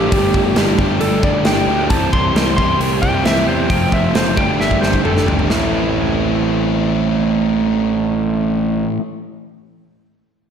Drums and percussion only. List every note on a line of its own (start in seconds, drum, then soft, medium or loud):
0.12 kick loud
0.12 open hi-hat soft
0.34 kick medium
0.56 snare loud
0.56 open hi-hat soft
0.79 kick medium
1.01 open hi-hat soft
1.23 kick medium
1.45 snare medium
1.45 open hi-hat soft
1.90 kick medium
1.90 open hi-hat soft
2.13 kick medium
2.36 snare loud
2.36 open hi-hat soft
2.58 kick medium
2.81 open hi-hat soft
3.03 kick medium
3.25 snare medium
3.25 open hi-hat soft
3.70 kick medium
3.70 open hi-hat soft
3.92 kick medium
4.15 snare loud
4.15 open hi-hat soft
4.37 kick loud
4.61 snare soft
4.71 kick medium
4.83 snare medium
4.93 kick medium
5.05 mid tom medium
5.17 snare medium
5.28 floor tom medium
5.39 floor tom medium
5.50 snare medium